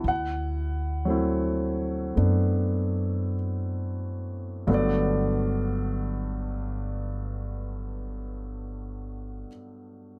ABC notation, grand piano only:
X:1
M:4/4
L:1/16
Q:"Swing" 1/4=43
K:G
V:1 name="Grand piano"
f12 z4 | d16 |]
V:2 name="Grand piano"
E z3 [F,A,CE]4 [A,B,D]8 | [G,,D,F,A,B,]16 |]